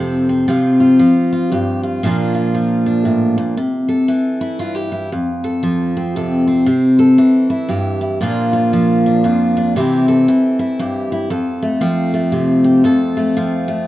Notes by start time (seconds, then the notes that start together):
Already playing: F2 C3 F3 C4 A4
0.29 C4
0.48 C3 F3 C4 F4
0.80 F4
0.99 F3
1.33 F4
1.52 G2 G4
1.83 F4
2.03 A#2 F3 A#3 D4 F4
2.35 F4
2.54 F3
2.86 D4
3.05 A2
3.38 A#2
3.57 C3
3.88 A4
4.08 E3
4.41 E4
4.59 G2 F4
4.75 G4
4.92 E4
5.12 F2
5.44 A4
5.63 F3
5.97 C4
6.16 C3 A4
6.48 C4
6.66 C3
6.99 A4
7.18 E3
7.50 E4
7.69 G2 G4
8.01 E4
8.21 A#2 F3 A#3 D4 F4
8.53 F4
8.73 F3
9.06 D4
9.24 F2 F4
9.57 D4
9.76 C3 E3 C4 E4 G4
10.08 A4
10.28 E3
10.59 E4
10.79 G2 G4
11.12 E4
11.30 F2 A4
11.62 A3
11.81 F3 C4
12.14 A3
12.32 C3
12.64 G4
12.84 F2 A4
13.17 A3
13.37 F3 C4
13.68 A3